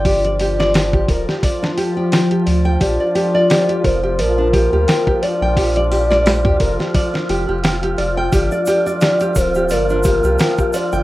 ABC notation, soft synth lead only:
X:1
M:4/4
L:1/8
Q:"Swing 16ths" 1/4=87
K:Gm
V:1 name="Soft synth lead"
d4- d z3 | d3 c B3 d- | d4- d z3 | d3 c B3 d |]